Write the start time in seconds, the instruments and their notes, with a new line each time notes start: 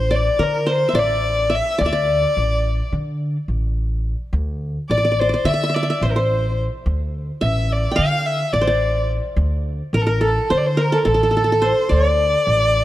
Already playing: upright bass A1, violin C5, qanun C5
0.11 qanun D5
0.15 violin D5
0.39 upright bass D3, qanun A#4, violin A#4
0.67 qanun C5
0.72 violin C5
0.89 qanun E5
0.93 upright bass A1, qanun D5
0.99 violin D5
1.50 qanun E5
1.55 violin E5
1.78 upright bass D2, qanun D5
1.83 violin D5, qanun E5
1.93 qanun D5
2.37 upright bass A1
2.92 upright bass D3
3.48 upright bass A1
4.33 upright bass D2
4.90 upright bass A1, violin D5, qanun D5
4.98 qanun D5
5.05 qanun D5
5.12 qanun D5
5.20 violin C5, qanun D5
5.29 qanun D5
5.34 qanun D5
5.45 upright bass D3, qanun E5, violin E5
5.54 qanun E5
5.63 qanun E5
5.70 qanun E5
5.75 violin D5, qanun E5
5.83 qanun E5
5.90 qanun E5
6.01 upright bass A1, qanun C5, violin C5
6.11 violin A#4
6.16 qanun C5, violin C5
6.86 upright bass D2
7.41 upright bass A1, qanun E5, violin E5
7.73 violin D5
7.91 qanun G5
7.96 upright bass D3, qanun F5, violin F5
8.26 violin E5
8.53 upright bass A1, violin D5, qanun D5
8.61 qanun C5
8.67 qanun D5
9.36 upright bass D2
9.93 upright bass A1, qanun A#4, violin A#4
10.02 violin A4
10.07 qanun A#4, violin A#4
10.21 qanun A4, violin A4
10.50 upright bass D3, qanun C5, violin C5
10.58 violin D5
10.67 violin C5
10.77 qanun A#4
10.82 violin A#4
10.92 qanun A4, violin A4
10.98 violin A#4
11.05 upright bass A1, qanun A4, violin A4
11.14 qanun A4
11.23 qanun A4
11.31 qanun A4
11.37 qanun A4
11.44 qanun A4
11.52 qanun A4
11.62 qanun C5
11.66 violin C5
11.89 upright bass D2, qanun D5
11.93 violin D5
12.47 upright bass A1